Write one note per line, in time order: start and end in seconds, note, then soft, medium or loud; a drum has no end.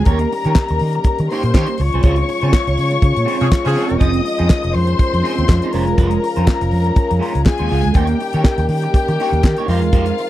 0.05 0.24 D#2 loud
0.05 1.77 D#3 medium
0.05 1.77 G3 medium
0.05 1.77 A#3 medium
0.05 0.26 A#3 medium
0.05 1.77 C#4 medium
0.05 0.20 D#4 medium
0.05 1.77 G4 medium
0.05 0.20 G4 loud
0.05 1.27 A#4 medium
0.05 0.20 C#5 loud
0.05 1.27 A#5 loud
0.05 kick loud
0.05 closed hi-hat medium
0.19 muted clean electric guitar stroke medium
0.19 closed hi-hat medium
0.32 muted clean electric guitar stroke soft
0.32 open hi-hat medium
0.44 0.53 D#3 loud
0.44 0.55 A#3 medium
0.44 0.56 D#4 medium
0.44 0.56 G4 medium
0.44 0.56 C#5 medium
0.44 closed hi-hat medium
0.55 kick loud
0.55 snare loud
0.55 clap loud
0.68 0.78 D#2 medium
0.68 muted clean electric guitar stroke medium
0.68 closed hi-hat medium
0.79 0.99 D#3 medium
0.79 open hi-hat medium
0.93 muted clean electric guitar stroke medium
0.93 closed hi-hat soft
1.04 muted fingered electric bass stroke soft
1.04 muted clean electric guitar stroke soft
1.04 kick loud
1.04 closed hi-hat medium
1.19 1.27 D#3 loud
1.19 muted clean electric guitar stroke soft
1.19 closed hi-hat medium
1.29 1.51 A#3 medium
1.29 1.45 D#4 loud
1.29 1.45 G4 medium
1.29 1.78 C5 medium
1.29 1.78 C6 medium
1.29 open hi-hat medium
1.33 1.44 C#5 medium
1.43 1.51 A#2 medium
1.43 muted clean electric guitar stroke soft
1.43 closed hi-hat medium
1.54 1.65 D#3 loud
1.54 1.75 A#3 medium
1.54 1.69 D#4 medium
1.54 1.69 G4 loud
1.54 1.68 C#5 loud
1.54 kick loud
1.54 snare loud
1.54 clap loud
1.67 muted clean electric guitar stroke soft
1.67 closed hi-hat medium
1.78 1.89 C#2 loud
1.78 4.00 C#3 medium
1.78 7.93 F3 medium
1.78 7.93 G#3 medium
1.78 7.93 C#4 medium
1.78 7.93 F4 medium
1.78 3.97 C#5 medium
1.78 3.97 C#6 loud
1.78 muted clean electric guitar stroke soft
1.78 open hi-hat medium
1.93 2.01 C2 medium
1.93 2.03 C4 medium
1.93 2.03 F4 medium
1.93 2.04 G#4 medium
1.93 2.05 C5 medium
1.93 closed hi-hat soft
2.03 2.21 C#2 loud
2.03 2.24 C4 medium
2.03 2.17 F4 medium
2.03 2.17 G#4 loud
2.03 2.16 C5 medium
2.03 kick loud
2.03 closed hi-hat medium
2.16 muted clean electric guitar stroke soft
2.16 closed hi-hat medium
2.29 muted clean electric guitar stroke soft
2.29 open hi-hat medium
2.41 2.50 C#3 loud
2.41 2.52 C4 medium
2.41 2.53 F4 medium
2.41 2.53 G#4 medium
2.41 2.53 C5 medium
2.41 closed hi-hat medium
2.53 muted clean electric guitar stroke soft
2.53 kick loud
2.53 snare loud
2.53 clap loud
2.67 2.75 C#2 medium
2.67 muted clean electric guitar stroke medium
2.67 closed hi-hat soft
2.78 2.96 C#3 medium
2.78 open hi-hat medium
2.91 muted clean electric guitar stroke medium
2.91 closed hi-hat soft
3.02 3.12 C#3 loud
3.02 muted clean electric guitar stroke soft
3.02 kick loud
3.02 closed hi-hat medium
3.15 3.24 A#2 medium
3.15 muted clean electric guitar stroke soft
3.15 closed hi-hat medium
3.25 3.46 C4 medium
3.25 3.39 F4 medium
3.25 3.39 G#4 loud
3.25 3.39 C5 medium
3.25 open hi-hat medium
3.40 3.49 C3 loud
3.40 3.48 F3 medium
3.40 3.48 C#4 medium
3.40 3.48 G#4 medium
3.40 muted clean electric guitar stroke soft
3.40 closed hi-hat soft
3.51 muted clean electric guitar stroke soft
3.51 kick loud
3.51 snare loud
3.51 clap loud
3.64 3.74 C#3 loud
3.64 3.99 F3 loud
3.64 3.74 C4 medium
3.64 3.99 C#4 loud
3.64 3.75 F4 medium
3.64 3.74 G#4 medium
3.64 3.99 G#4 loud
3.64 3.76 C5 medium
3.64 closed hi-hat soft
3.75 3.96 C4 medium
3.75 3.89 F4 medium
3.75 3.88 G#4 medium
3.75 3.87 C5 medium
3.75 snare soft
3.75 open hi-hat medium
3.88 3.99 E1 medium
3.88 muted clean electric guitar stroke soft
3.88 closed hi-hat soft
3.98 4.19 F1 medium
3.98 5.72 D#3 medium
3.98 4.20 C4 medium
3.98 4.12 D#4 medium
3.98 4.12 G#4 loud
3.98 4.12 C5 loud
3.98 4.73 D#5 medium
3.98 4.74 D#6 medium
3.98 kick loud
3.98 closed hi-hat medium
4.13 muted clean electric guitar stroke soft
4.13 closed hi-hat medium
4.23 muted clean electric guitar stroke soft
4.23 open hi-hat medium
4.39 4.47 F2 loud
4.39 4.49 C4 medium
4.39 4.49 D#4 medium
4.39 4.49 G#4 medium
4.39 4.49 C5 medium
4.39 closed hi-hat soft
4.50 kick loud
4.50 snare loud
4.50 clap loud
4.63 4.72 F1 medium
4.63 muted clean electric guitar stroke soft
4.63 closed hi-hat soft
4.74 4.93 F2 loud
4.74 5.71 C5 loud
4.74 5.72 C6 loud
4.74 open hi-hat medium
4.87 muted clean electric guitar stroke soft
4.87 closed hi-hat soft
4.97 muted clean electric guitar stroke soft
4.97 muted fingered electric bass stroke medium
4.97 kick loud
4.97 closed hi-hat medium
5.12 5.21 F2 medium
5.12 muted clean electric guitar stroke soft
5.12 closed hi-hat medium
5.23 5.44 C4 medium
5.23 5.37 D#4 medium
5.23 5.36 G#4 medium
5.23 5.35 C5 medium
5.23 open hi-hat medium
5.37 5.46 D#2 medium
5.37 muted clean electric guitar stroke soft
5.37 closed hi-hat soft
5.48 5.59 F2 loud
5.48 muted clean electric guitar stroke soft
5.48 kick loud
5.48 snare loud
5.48 clap loud
5.62 5.73 C4 medium
5.62 5.74 D#4 medium
5.62 5.74 G#4 medium
5.62 5.73 C5 medium
5.62 closed hi-hat medium
5.72 5.88 F1 medium
5.72 7.94 C#3 loud
5.72 5.94 G#3 medium
5.72 5.87 C#4 medium
5.72 5.87 F4 medium
5.72 7.42 A#4 medium
5.72 5.86 C5 medium
5.72 7.42 A#5 medium
5.72 snare soft
5.72 open hi-hat medium
5.87 5.96 E1 medium
5.87 muted clean electric guitar stroke soft
5.87 closed hi-hat soft
5.98 6.16 F1 loud
5.98 6.18 G#3 medium
5.98 6.12 C#4 medium
5.98 6.11 F4 medium
5.98 6.11 C5 loud
5.98 kick loud
5.98 closed hi-hat medium
6.11 muted clean electric guitar stroke soft
6.11 closed hi-hat medium
6.22 muted clean electric guitar stroke soft
6.22 open hi-hat medium
6.36 6.45 F2 loud
6.36 6.47 G#3 medium
6.36 6.48 C#4 medium
6.36 6.48 F4 medium
6.36 6.48 C5 medium
6.36 closed hi-hat soft
6.47 kick loud
6.47 snare loud
6.47 clap loud
6.61 6.69 F1 loud
6.61 muted clean electric guitar stroke medium
6.61 closed hi-hat medium
6.71 6.90 F2 loud
6.71 open hi-hat medium
6.84 muted clean electric guitar stroke medium
6.84 closed hi-hat soft
6.96 muted clean electric guitar stroke soft
6.96 kick loud
6.96 closed hi-hat medium
7.10 7.19 F2 medium
7.10 muted clean electric guitar stroke medium
7.10 closed hi-hat medium
7.19 7.41 G#3 medium
7.19 7.34 C#4 medium
7.19 7.34 F4 medium
7.19 7.33 C5 loud
7.19 open hi-hat medium
7.34 7.43 C#2 loud
7.34 muted clean electric guitar stroke soft
7.34 closed hi-hat soft
7.45 7.95 G#4 medium
7.45 7.95 G#5 loud
7.45 muted clean electric guitar stroke soft
7.45 kick loud
7.45 snare loud
7.45 clap loud
7.58 7.68 D#2 medium
7.58 7.69 G#3 soft
7.58 7.70 C#4 medium
7.58 7.71 F4 medium
7.58 7.71 C5 medium
7.58 closed hi-hat medium
7.69 7.81 C#2 medium
7.69 7.91 G#3 medium
7.69 7.83 C#4 medium
7.69 7.83 F4 medium
7.69 7.83 C5 medium
7.69 snare soft
7.69 open hi-hat medium
7.84 7.93 D2 loud
7.84 muted clean electric guitar stroke soft
7.84 closed hi-hat soft
7.94 8.13 D#2 loud
7.94 9.66 D#3 medium
7.94 9.66 G3 medium
7.94 9.66 A#3 medium
7.94 8.16 A#3 loud
7.94 9.66 C#4 medium
7.94 8.10 D#4 loud
7.94 8.68 G4 medium
7.94 8.09 G4 medium
7.94 10.30 A#4 medium
7.94 8.08 C#5 loud
7.94 8.69 G5 loud
7.94 kick loud
7.94 closed hi-hat medium
8.07 muted clean electric guitar stroke soft
8.07 closed hi-hat medium
8.20 muted clean electric guitar stroke soft
8.20 open hi-hat medium
8.33 8.42 D#3 medium
8.33 8.43 A#3 medium
8.33 8.45 D#4 medium
8.33 8.45 G4 medium
8.33 8.45 C#5 medium
8.33 closed hi-hat medium
8.44 muted clean electric guitar stroke medium
8.44 kick loud
8.44 snare loud
8.44 clap loud
8.58 8.66 D#2 medium
8.58 muted clean electric guitar stroke soft
8.58 closed hi-hat medium
8.69 8.87 D#3 loud
8.69 9.66 G4 loud
8.69 9.66 G5 loud
8.69 open hi-hat medium
8.82 muted clean electric guitar stroke medium
8.82 closed hi-hat soft
8.94 muted clean electric guitar stroke medium
8.94 muted fingered electric bass stroke soft
8.94 kick loud
8.94 closed hi-hat medium
9.08 9.16 D#3 medium
9.08 muted clean electric guitar stroke medium
9.08 closed hi-hat medium
9.20 9.40 A#3 medium
9.20 9.34 D#4 medium
9.20 9.33 G4 medium
9.20 9.32 C#5 medium
9.20 open hi-hat medium
9.32 9.40 D#2 medium
9.32 muted clean electric guitar stroke medium
9.32 closed hi-hat soft
9.44 9.54 D#3 medium
9.44 muted clean electric guitar stroke medium
9.44 kick loud
9.44 snare loud
9.44 clap medium
9.57 9.68 A#3 medium
9.57 9.68 D#4 medium
9.57 9.68 G4 medium
9.57 9.70 C#5 medium
9.57 closed hi-hat medium
9.67 9.82 F2 medium
9.67 10.30 F3 loud
9.67 10.30 G#3 medium
9.67 9.89 G#3 medium
9.67 10.30 C4 medium
9.67 10.30 D#4 medium
9.67 9.82 D#4 medium
9.67 9.82 G4 medium
9.67 9.81 C5 medium
9.67 10.30 F5 loud
9.67 snare soft
9.67 open hi-hat medium
9.71 10.30 F4 medium
9.82 9.93 E2 medium
9.82 muted clean electric guitar stroke medium
9.82 closed hi-hat soft
9.93 10.11 F2 loud
9.93 10.13 G#3 medium
9.93 10.08 D#4 medium
9.93 10.07 G4 medium
9.93 10.06 C5 medium
9.93 kick loud
9.93 closed hi-hat medium
10.06 muted clean electric guitar stroke medium
10.06 closed hi-hat medium
10.18 muted clean electric guitar stroke soft
10.18 open hi-hat medium